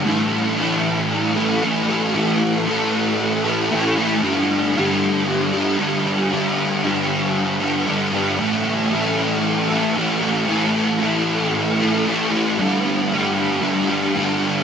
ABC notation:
X:1
M:4/4
L:1/8
Q:1/4=115
K:Amix
V:1 name="Distorted electric guitar" clef=bass
[A,,E,A,]2 [A,,E,A,]3 [E,A,] [A,,E,A,] [E,A,] | [A,,E,A,]2 [A,,E,A,]3 [E,A,] [A,,E,A,] [E,A,] | [G,,D,G,]2 [G,,D,G,]3 [D,G,] [G,,D,G,] [D,G,] | [G,,D,G,]2 [G,,D,G,]3 [D,G,] [G,,D,G,] [D,G,] |
[A,,E,A,]2 [A,,E,A,]3 [E,A,] [A,,E,A,] [E,A,] | [A,,E,A,]2 [A,,E,A,]3 [E,A,] [A,,E,A,] [E,A,] | [G,,D,G,]2 [G,,D,G,]2 [G,,D,G,] [D,G,] [G,,D,G,]2 |]